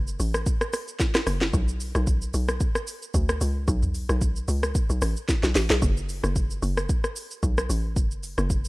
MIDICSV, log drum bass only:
0, 0, Header, 1, 2, 480
1, 0, Start_track
1, 0, Key_signature, 3, "minor"
1, 0, Tempo, 535714
1, 1375, Time_signature, 4, 2, 24, 8
1, 7780, End_track
2, 0, Start_track
2, 0, Title_t, "Log drum bass"
2, 0, Program_c, 0, 39
2, 0, Note_on_c, 0, 30, 98
2, 159, Note_off_c, 0, 30, 0
2, 176, Note_on_c, 0, 33, 92
2, 404, Note_off_c, 0, 33, 0
2, 1135, Note_on_c, 0, 30, 91
2, 1364, Note_off_c, 0, 30, 0
2, 1375, Note_on_c, 0, 35, 104
2, 1730, Note_off_c, 0, 35, 0
2, 1749, Note_on_c, 0, 35, 103
2, 2080, Note_off_c, 0, 35, 0
2, 2096, Note_on_c, 0, 35, 91
2, 2325, Note_off_c, 0, 35, 0
2, 2816, Note_on_c, 0, 38, 98
2, 3044, Note_off_c, 0, 38, 0
2, 3056, Note_on_c, 0, 37, 91
2, 3284, Note_off_c, 0, 37, 0
2, 3295, Note_on_c, 0, 35, 112
2, 3650, Note_off_c, 0, 35, 0
2, 3667, Note_on_c, 0, 35, 99
2, 3999, Note_off_c, 0, 35, 0
2, 4015, Note_on_c, 0, 37, 90
2, 4244, Note_off_c, 0, 37, 0
2, 4387, Note_on_c, 0, 35, 90
2, 4490, Note_off_c, 0, 35, 0
2, 4496, Note_on_c, 0, 33, 90
2, 4621, Note_off_c, 0, 33, 0
2, 4867, Note_on_c, 0, 35, 95
2, 4970, Note_off_c, 0, 35, 0
2, 4974, Note_on_c, 0, 33, 92
2, 5100, Note_off_c, 0, 33, 0
2, 5107, Note_on_c, 0, 35, 92
2, 5210, Note_off_c, 0, 35, 0
2, 5215, Note_on_c, 0, 30, 108
2, 5570, Note_off_c, 0, 30, 0
2, 5587, Note_on_c, 0, 30, 99
2, 5919, Note_off_c, 0, 30, 0
2, 5935, Note_on_c, 0, 30, 101
2, 6164, Note_off_c, 0, 30, 0
2, 6656, Note_on_c, 0, 35, 95
2, 6885, Note_off_c, 0, 35, 0
2, 6895, Note_on_c, 0, 33, 96
2, 7135, Note_on_c, 0, 30, 114
2, 7148, Note_off_c, 0, 33, 0
2, 7490, Note_off_c, 0, 30, 0
2, 7508, Note_on_c, 0, 30, 104
2, 7780, Note_off_c, 0, 30, 0
2, 7780, End_track
0, 0, End_of_file